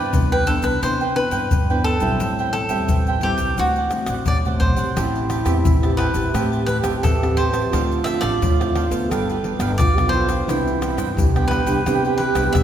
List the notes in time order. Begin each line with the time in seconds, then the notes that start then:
Already playing: C3 E3 B3 D4 B4 C5 G5
0.13 C2 G2 E4 B4 C5 G5, pandeiro, shaker, surdo
0.32 B4 C5 G5, pandeiro, shaker
0.46 E3 B3 D4 E4 A4 B4 C5 G5, pandeiro, shaker
0.62 C2 B4, pandeiro, shaker, surdo
0.82 C3 E3 B3 D4 E4 B4 C5 G5, pandeiro, shaker, surdo
1.01 B4 C5 G5, pandeiro, shaker
1.15 E3 B3 D4 B4, muted cavaquinho stroke, pandeiro
1.31 G2 B4 G5, pandeiro, shaker, surdo
1.51 G2, pandeiro, shaker, surdo
1.70 E3 B3 D4 B4 C5 G5, pandeiro, shaker
1.84 E4 A4 B4 G5, pandeiro
2.00 B1 G3 C4 E4 B4 C5 G5, pandeiro, shaker, surdo
2.20 A1 A2 A4 C5 E5 G5, pandeiro, shaker, surdo
2.39 C5 E5 G5, pandeiro, shaker
2.53 A4, muted cavaquinho stroke, pandeiro
2.69 E2 G3 C4 E4 C5 E5 G5, pandeiro, shaker, surdo
2.88 A1 E3 A4 C5 E5 G5, pandeiro, shaker, surdo
3.07 C5 E5 G5, pandeiro, shaker
3.21 G3 C4 E4 G4 A4 C5 E5, pandeiro
3.25 G5
3.38 C2, pandeiro, shaker, surdo
3.58 D2 D3 A3 C4 D4 F#4 C5 D5 F#5, pandeiro, shaker, surdo
3.76 C5 D5 F#5, pandeiro, shaker
3.91 A3 C4 F#4, muted cavaquinho stroke, pandeiro, tamborim, shaker
4.06 A1 C5 D5 F#5, pandeiro, tamborim, shaker, surdo
4.26 A1 A2 D5, pandeiro, shaker, surdo
4.45 C2 A3 C4 F#4 C5 D5 F#5, pandeiro, shaker
4.60 B1 D4 C5 D5 F#5, pandeiro, surdo
4.76 A1 C4 G4 C5 D5 F#5, pandeiro, shaker, surdo
4.96 A1 A3 E4 G4 C5 E5 A5, pandeiro, tamborim, shaker, surdo
5.15 pandeiro, shaker
5.30 G4 C5 E5 A5, pandeiro, tamborim, shaker
5.45 E2 C4 G4 B4 C5 E5 A5, pandeiro, tamborim, shaker, surdo
5.65 A1 E3, pandeiro, shaker, surdo
5.83 C4 G4 B4 C5 E5 A5, pandeiro, tamborim, shaker
5.97 G4 B4 C5 E5 A5, pandeiro, tamborim
6.14 A1 C4 G4 B4 C5 E5 A5, pandeiro, shaker, surdo
6.33 A2 A3 C4 G4 B4 C5 E5 A5, pandeiro, tamborim, shaker, surdo
6.52 C5 E5 A5, pandeiro, shaker
6.66 G4 B4 C5 E5 A5, pandeiro, shaker, surdo
6.83 A1 C4 G4 B4 C5 E5 A5, pandeiro, tamborim, shaker, surdo
7.03 A1 E3 A4, pandeiro, tamborim, shaker, surdo
7.22 C4 G4 B4, pandeiro, tamborim, shaker
7.37 G4 C5 E5 A5, pandeiro
7.53 F3 C4 C5 E5 A5, pandeiro, tamborim, shaker, surdo
7.71 D2 D3 D4 F4 A4 C5 F5, pandeiro, tamborim, shaker, surdo
7.91 pandeiro, shaker
8.04 F3 C4 D4 A4 C5 E5 F5, pandeiro, tamborim, shaker
8.21 A1 D4 A4 C5 D5 F5, pandeiro, tamborim, shaker, surdo
8.42 D2 A2, pandeiro, shaker, surdo
8.60 F3 C4 E4 A4 C5 F5, pandeiro, tamborim, shaker
8.75 D4 A4 C5 F5, pandeiro, tamborim
8.90 D2 B3 F4 A4 C5 F5, pandeiro, shaker, surdo
9.09 G1 G3 D4 G4 A4 B4 F5, pandeiro, tamborim, shaker, surdo
9.29 G4 B4 F5, pandeiro, shaker
9.43 B3 D4 F4 G4 A4 B4 F5, pandeiro
9.59 G1 D4 G4 B4 F5, pandeiro, tamborim, shaker, surdo
9.78 B1 D3 F4 D5, pandeiro, tamborim, shaker, surdo
9.95 B3 F4 G4 A4, pandeiro, tamborim, shaker
10.00 F4
10.09 E4 C5, pandeiro
10.13 D4 F4 G4 B4 F5
10.29 G4 B4 F5, pandeiro, tamborim, shaker, surdo
10.46 C2 C3 E3 B3 D4 E4 C5, pandeiro, tamborim, shaker, surdo
10.51 G5
10.67 pandeiro, shaker
10.81 E3 D4 E4 B4 C5 G5, pandeiro, tamborim, shaker
10.97 G2 E4 B4 C5 G5, pandeiro, tamborim, shaker, surdo
11.15 C2 G2 G4, pandeiro, shaker, surdo
11.35 E3 B3 D4 B4 C5 G5, pandeiro, tamborim, shaker
11.48 E4 B4, pandeiro, tamborim
11.52 B4 C5 G5
11.66 C2 E3 B3 D4 B4 C5 G5, pandeiro, shaker, surdo
11.86 C3 E3 B3 D4 E4 B4 C5 G5, pandeiro, tamborim, shaker, surdo
12.05 B4 C5 G5, pandeiro, shaker
12.18 E4 B4 C5 G5, pandeiro
12.35 C2 E3 B3 D4 E4 B4 C5 G5, pandeiro, tamborim, shaker, surdo
12.53 B1 G2 E5, pandeiro, tamborim, shaker, surdo